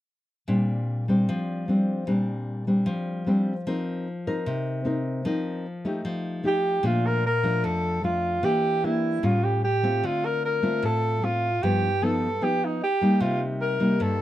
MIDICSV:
0, 0, Header, 1, 3, 480
1, 0, Start_track
1, 0, Key_signature, -2, "major"
1, 0, Tempo, 397614
1, 583, Time_signature, 4, 2, 24, 8
1, 17163, End_track
2, 0, Start_track
2, 0, Title_t, "Alto saxophone"
2, 0, Program_c, 0, 65
2, 7815, Note_on_c, 0, 67, 91
2, 8248, Note_off_c, 0, 67, 0
2, 8285, Note_on_c, 0, 65, 85
2, 8532, Note_on_c, 0, 70, 95
2, 8550, Note_off_c, 0, 65, 0
2, 8760, Note_off_c, 0, 70, 0
2, 8769, Note_on_c, 0, 70, 91
2, 9228, Note_on_c, 0, 69, 96
2, 9246, Note_off_c, 0, 70, 0
2, 9707, Note_off_c, 0, 69, 0
2, 9713, Note_on_c, 0, 65, 84
2, 10200, Note_on_c, 0, 67, 100
2, 10218, Note_off_c, 0, 65, 0
2, 10680, Note_on_c, 0, 64, 88
2, 10698, Note_off_c, 0, 67, 0
2, 11171, Note_on_c, 0, 65, 86
2, 11189, Note_off_c, 0, 64, 0
2, 11401, Note_on_c, 0, 67, 76
2, 11419, Note_off_c, 0, 65, 0
2, 11633, Note_off_c, 0, 67, 0
2, 11642, Note_on_c, 0, 67, 89
2, 12144, Note_on_c, 0, 65, 88
2, 12163, Note_off_c, 0, 67, 0
2, 12375, Note_on_c, 0, 70, 96
2, 12393, Note_off_c, 0, 65, 0
2, 12600, Note_off_c, 0, 70, 0
2, 12618, Note_on_c, 0, 70, 85
2, 13049, Note_off_c, 0, 70, 0
2, 13106, Note_on_c, 0, 69, 91
2, 13574, Note_on_c, 0, 65, 86
2, 13592, Note_off_c, 0, 69, 0
2, 14040, Note_on_c, 0, 67, 85
2, 14058, Note_off_c, 0, 65, 0
2, 14531, Note_on_c, 0, 69, 95
2, 14549, Note_off_c, 0, 67, 0
2, 15017, Note_on_c, 0, 67, 86
2, 15035, Note_off_c, 0, 69, 0
2, 15267, Note_on_c, 0, 63, 72
2, 15285, Note_off_c, 0, 67, 0
2, 15485, Note_off_c, 0, 63, 0
2, 15497, Note_on_c, 0, 67, 87
2, 15951, Note_on_c, 0, 65, 81
2, 15969, Note_off_c, 0, 67, 0
2, 16187, Note_off_c, 0, 65, 0
2, 16438, Note_on_c, 0, 70, 81
2, 16922, Note_on_c, 0, 69, 89
2, 16940, Note_off_c, 0, 70, 0
2, 17163, Note_off_c, 0, 69, 0
2, 17163, End_track
3, 0, Start_track
3, 0, Title_t, "Nylon-string guitar"
3, 0, Program_c, 1, 24
3, 574, Note_on_c, 1, 55, 46
3, 577, Note_on_c, 1, 46, 59
3, 580, Note_on_c, 1, 60, 50
3, 585, Note_on_c, 1, 62, 58
3, 1261, Note_off_c, 1, 55, 0
3, 1265, Note_off_c, 1, 60, 0
3, 1265, Note_off_c, 1, 62, 0
3, 1305, Note_on_c, 1, 55, 58
3, 1319, Note_on_c, 1, 60, 58
3, 1321, Note_on_c, 1, 62, 62
3, 1518, Note_off_c, 1, 46, 0
3, 1554, Note_on_c, 1, 53, 62
3, 1988, Note_off_c, 1, 55, 0
3, 1994, Note_off_c, 1, 62, 0
3, 1995, Note_off_c, 1, 60, 0
3, 2026, Note_on_c, 1, 55, 50
3, 2038, Note_on_c, 1, 60, 50
3, 2044, Note_on_c, 1, 62, 54
3, 2468, Note_off_c, 1, 55, 0
3, 2474, Note_off_c, 1, 60, 0
3, 2477, Note_off_c, 1, 62, 0
3, 2487, Note_off_c, 1, 53, 0
3, 2498, Note_on_c, 1, 46, 58
3, 2503, Note_on_c, 1, 55, 54
3, 2507, Note_on_c, 1, 60, 48
3, 2516, Note_on_c, 1, 62, 52
3, 3186, Note_off_c, 1, 55, 0
3, 3189, Note_off_c, 1, 60, 0
3, 3194, Note_off_c, 1, 62, 0
3, 3224, Note_on_c, 1, 55, 48
3, 3232, Note_on_c, 1, 60, 48
3, 3232, Note_on_c, 1, 62, 62
3, 3440, Note_off_c, 1, 46, 0
3, 3451, Note_on_c, 1, 53, 62
3, 3908, Note_off_c, 1, 55, 0
3, 3910, Note_off_c, 1, 60, 0
3, 3912, Note_off_c, 1, 62, 0
3, 3941, Note_on_c, 1, 55, 47
3, 3950, Note_on_c, 1, 60, 52
3, 3955, Note_on_c, 1, 62, 55
3, 4253, Note_off_c, 1, 55, 0
3, 4259, Note_off_c, 1, 60, 0
3, 4260, Note_off_c, 1, 62, 0
3, 4396, Note_off_c, 1, 53, 0
3, 4427, Note_on_c, 1, 53, 62
3, 4434, Note_on_c, 1, 60, 51
3, 4440, Note_on_c, 1, 63, 45
3, 4445, Note_on_c, 1, 70, 56
3, 4907, Note_off_c, 1, 60, 0
3, 4912, Note_off_c, 1, 63, 0
3, 4912, Note_off_c, 1, 70, 0
3, 5156, Note_on_c, 1, 60, 56
3, 5156, Note_on_c, 1, 63, 63
3, 5158, Note_on_c, 1, 70, 63
3, 5365, Note_off_c, 1, 53, 0
3, 5388, Note_on_c, 1, 48, 63
3, 5832, Note_off_c, 1, 63, 0
3, 5834, Note_off_c, 1, 60, 0
3, 5835, Note_off_c, 1, 70, 0
3, 5852, Note_on_c, 1, 60, 54
3, 5857, Note_on_c, 1, 63, 55
3, 5867, Note_on_c, 1, 70, 54
3, 6302, Note_off_c, 1, 60, 0
3, 6304, Note_off_c, 1, 63, 0
3, 6309, Note_off_c, 1, 70, 0
3, 6324, Note_off_c, 1, 48, 0
3, 6337, Note_on_c, 1, 53, 65
3, 6340, Note_on_c, 1, 60, 49
3, 6345, Note_on_c, 1, 63, 50
3, 6352, Note_on_c, 1, 70, 54
3, 6819, Note_off_c, 1, 60, 0
3, 6824, Note_off_c, 1, 63, 0
3, 6827, Note_off_c, 1, 70, 0
3, 7059, Note_on_c, 1, 57, 57
3, 7067, Note_on_c, 1, 63, 60
3, 7074, Note_on_c, 1, 67, 61
3, 7279, Note_off_c, 1, 53, 0
3, 7300, Note_on_c, 1, 53, 62
3, 7745, Note_off_c, 1, 57, 0
3, 7749, Note_off_c, 1, 63, 0
3, 7751, Note_off_c, 1, 67, 0
3, 7768, Note_on_c, 1, 57, 56
3, 7776, Note_on_c, 1, 63, 47
3, 7785, Note_on_c, 1, 67, 50
3, 8219, Note_off_c, 1, 57, 0
3, 8223, Note_off_c, 1, 63, 0
3, 8228, Note_off_c, 1, 67, 0
3, 8236, Note_off_c, 1, 53, 0
3, 8245, Note_on_c, 1, 46, 63
3, 8249, Note_on_c, 1, 53, 50
3, 8255, Note_on_c, 1, 57, 47
3, 8262, Note_on_c, 1, 62, 56
3, 8736, Note_off_c, 1, 53, 0
3, 8737, Note_off_c, 1, 57, 0
3, 8738, Note_off_c, 1, 62, 0
3, 8974, Note_on_c, 1, 53, 67
3, 8979, Note_on_c, 1, 57, 58
3, 8988, Note_on_c, 1, 62, 56
3, 9192, Note_off_c, 1, 46, 0
3, 9221, Note_on_c, 1, 41, 58
3, 9662, Note_off_c, 1, 53, 0
3, 9664, Note_off_c, 1, 57, 0
3, 9669, Note_off_c, 1, 62, 0
3, 9700, Note_on_c, 1, 53, 54
3, 9709, Note_on_c, 1, 57, 52
3, 9710, Note_on_c, 1, 62, 47
3, 10160, Note_off_c, 1, 41, 0
3, 10163, Note_off_c, 1, 62, 0
3, 10165, Note_off_c, 1, 53, 0
3, 10167, Note_off_c, 1, 57, 0
3, 10175, Note_on_c, 1, 58, 57
3, 10176, Note_on_c, 1, 52, 63
3, 10181, Note_on_c, 1, 62, 48
3, 10185, Note_on_c, 1, 67, 56
3, 10622, Note_off_c, 1, 58, 0
3, 10623, Note_off_c, 1, 62, 0
3, 10627, Note_off_c, 1, 67, 0
3, 10668, Note_on_c, 1, 58, 48
3, 10672, Note_on_c, 1, 62, 53
3, 10678, Note_on_c, 1, 67, 53
3, 11109, Note_off_c, 1, 58, 0
3, 11111, Note_off_c, 1, 62, 0
3, 11113, Note_off_c, 1, 67, 0
3, 11118, Note_off_c, 1, 52, 0
3, 11140, Note_on_c, 1, 55, 55
3, 11142, Note_on_c, 1, 45, 64
3, 11144, Note_on_c, 1, 61, 55
3, 11156, Note_on_c, 1, 65, 54
3, 11619, Note_off_c, 1, 55, 0
3, 11622, Note_off_c, 1, 61, 0
3, 11628, Note_off_c, 1, 65, 0
3, 11868, Note_on_c, 1, 60, 60
3, 11870, Note_on_c, 1, 57, 56
3, 11877, Note_on_c, 1, 65, 72
3, 12080, Note_off_c, 1, 45, 0
3, 12114, Note_on_c, 1, 50, 63
3, 12787, Note_off_c, 1, 60, 0
3, 12789, Note_off_c, 1, 57, 0
3, 12792, Note_off_c, 1, 65, 0
3, 12827, Note_on_c, 1, 57, 63
3, 12834, Note_on_c, 1, 60, 56
3, 12839, Note_on_c, 1, 65, 66
3, 13045, Note_off_c, 1, 50, 0
3, 13068, Note_on_c, 1, 45, 61
3, 13509, Note_off_c, 1, 57, 0
3, 13510, Note_off_c, 1, 60, 0
3, 13510, Note_off_c, 1, 65, 0
3, 13547, Note_on_c, 1, 57, 48
3, 13560, Note_on_c, 1, 60, 43
3, 13566, Note_on_c, 1, 65, 57
3, 13868, Note_off_c, 1, 57, 0
3, 13875, Note_off_c, 1, 60, 0
3, 13878, Note_off_c, 1, 65, 0
3, 14002, Note_off_c, 1, 45, 0
3, 14040, Note_on_c, 1, 43, 64
3, 14043, Note_on_c, 1, 53, 54
3, 14049, Note_on_c, 1, 59, 47
3, 14052, Note_on_c, 1, 63, 50
3, 14342, Note_off_c, 1, 53, 0
3, 14344, Note_off_c, 1, 59, 0
3, 14347, Note_off_c, 1, 63, 0
3, 14507, Note_on_c, 1, 53, 58
3, 14512, Note_on_c, 1, 59, 57
3, 14524, Note_on_c, 1, 63, 52
3, 14814, Note_off_c, 1, 53, 0
3, 14817, Note_off_c, 1, 59, 0
3, 14823, Note_off_c, 1, 63, 0
3, 14968, Note_off_c, 1, 43, 0
3, 14984, Note_on_c, 1, 53, 51
3, 14990, Note_on_c, 1, 59, 50
3, 14995, Note_on_c, 1, 63, 59
3, 15461, Note_off_c, 1, 53, 0
3, 15464, Note_off_c, 1, 59, 0
3, 15466, Note_off_c, 1, 63, 0
3, 15709, Note_on_c, 1, 55, 63
3, 15714, Note_on_c, 1, 58, 61
3, 15723, Note_on_c, 1, 63, 70
3, 15940, Note_on_c, 1, 48, 70
3, 16627, Note_off_c, 1, 55, 0
3, 16629, Note_off_c, 1, 58, 0
3, 16634, Note_off_c, 1, 63, 0
3, 16657, Note_on_c, 1, 55, 64
3, 16664, Note_on_c, 1, 58, 59
3, 16666, Note_on_c, 1, 63, 58
3, 16877, Note_off_c, 1, 48, 0
3, 16900, Note_on_c, 1, 43, 64
3, 17163, Note_off_c, 1, 43, 0
3, 17163, Note_off_c, 1, 55, 0
3, 17163, Note_off_c, 1, 58, 0
3, 17163, Note_off_c, 1, 63, 0
3, 17163, End_track
0, 0, End_of_file